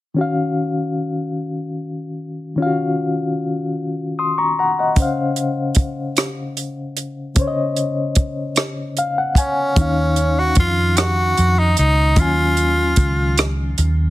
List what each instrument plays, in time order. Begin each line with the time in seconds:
0.14 reed electric piano D#3 C#4 F#4
0.21 reed electric piano F5
2.56 reed electric piano D#3 C#4
2.60 reed electric piano F4 F5
2.66 reed electric piano F#4
4.19 reed electric piano C6 D#6
4.38 reed electric piano A#5 C#6
4.59 reed electric piano F#5 A#5
4.79 reed electric piano D#5 F#5
4.96 reed electric piano C#3 C#4, kick, closed hi-hat
5.00 reed electric piano C5 F5
5.36 closed hi-hat
5.75 kick, closed hi-hat
6.17 cross-stick, closed hi-hat
6.57 closed hi-hat
6.97 closed hi-hat
7.35 reed electric piano C#3 C#4, kick, closed hi-hat
7.39 reed electric piano C5 C#5
7.47 reed electric piano D#5
7.76 closed hi-hat
8.15 kick, closed hi-hat
8.56 cross-stick, closed hi-hat
8.97 reed electric piano F5, closed hi-hat
9.18 reed electric piano F#5
9.35 tenor saxophone C#4, reed electric piano G#5, kick, closed hi-hat
9.75 fingered electric bass D#2, reed electric piano D#3 C#4, kick, closed hi-hat
9.79 reed electric piano D#4 F5
10.16 closed hi-hat
10.39 tenor saxophone F#4
10.55 fingered electric bass F2, kick, closed hi-hat
10.60 tenor saxophone F4
10.97 tenor saxophone F#4, cross-stick, closed hi-hat
11.37 fingered electric bass F2, closed hi-hat
11.59 tenor saxophone D#4
11.77 fingered electric bass C#2, tenor saxophone D#4, closed hi-hat
12.15 fingered electric bass D#2, reed electric piano D#3 C#4, tenor saxophone F4, kick, closed hi-hat
12.20 reed electric piano F#3 G#5
12.57 closed hi-hat
12.96 fingered electric bass C#2, kick, closed hi-hat
13.38 cross-stick, closed hi-hat
13.78 fingered electric bass D#2, closed hi-hat